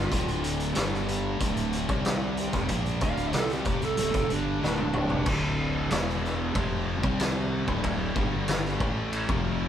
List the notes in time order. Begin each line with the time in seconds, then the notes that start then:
Already playing: G2 D3 G3 F4
0.11 D1 D2 A2 D3, kick, closed hi-hat
0.28 closed hi-hat
0.44 closed hi-hat
0.60 closed hi-hat
0.75 G1 G2 D3 G3, snare, closed hi-hat
0.94 snare
1.08 closed hi-hat
1.39 D1 D2 A2 D3, kick, closed hi-hat
1.57 closed hi-hat
1.73 closed hi-hat
1.88 C2 C3 G3 C4, kick, closed hi-hat
2.05 snare, closed hi-hat
2.37 closed hi-hat
2.53 F1 F2 C3, kick, snare, closed hi-hat
2.68 A#1 A#2 F3 A#3, kick, closed hi-hat
2.86 closed hi-hat
3.01 D1 D2 A2 D3 F5, kick, snare, closed hi-hat
3.17 closed hi-hat
3.33 C2 C3 G3 C4 A4, snare, closed hi-hat
3.50 G4, snare, closed hi-hat
3.65 F1 F2 C3, kick, closed hi-hat
3.82 C2 C3 G3 A4, closed hi-hat
3.97 D1 D2 A2, closed hi-hat
4.14 F1 F2 C3 A4, kick, closed hi-hat
4.30 G1 G2 D3 G3 D4, closed hi-hat
4.62 D1 D2 A2 D3, snare
4.78 high tom
4.94 mid tom
5.10 F1 F2 C3, floor tom
5.26 D1 D2 A2 D3, kick, crash
5.90 E1 E2 B2 E3, snare, ride bell
6.08 snare
6.24 snare
6.55 F1 F2 C3 F3, kick, ride bell
7.03 C2 C3 G3 C4, kick
7.20 snare, ride bell
7.67 D1 D2 A2 D3, kick
7.84 kick, ride bell
8.16 G1 G2 D3 G3, kick
8.48 snare, ride bell
8.65 snare
8.80 A1 A2 E3 A3, kick
9.13 ride bell
9.29 F1 F2 C3 F3, kick